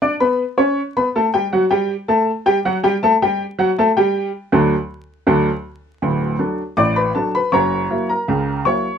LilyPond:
<<
  \new Staff \with { instrumentName = "Upright piano" } { \time 2/4 \key d \major \tempo 4 = 80 <d' d'' d'''>16 <b b' b''>8 <cis' cis'' cis'''>8 <b b' b''>16 <a a' a''>16 <g g' g''>16 | <fis fis' fis''>16 <g g' g''>8 <a a' a''>8 <g g' g''>16 <fis fis' fis''>16 <g g' g''>16 | <a a' a''>16 <g g' g''>8 <fis fis' fis''>16 <a a' a''>16 <g g' g''>8. | <d, fis d' a'>8 r8 <d, fis d' a'>8 r8 |
r4 <d'' d'''>16 <b' b''>16 <a' a''>16 <b' b''>16 | <cis'' ais'' cis'''>8. <ais' ais''>8. <cis'' cis'''>8 | }
  \new Staff \with { instrumentName = "Upright piano" } { \clef bass \time 2/4 \key d \major r2 | r2 | r2 | r2 |
<d,, d,>8 <fis d' a'>8 <a,, a,>8 <fis d'>8 | <fis,, fis,>8 <fis ais e'>8 <cis, cis>8 <fis ais e'>8 | }
>>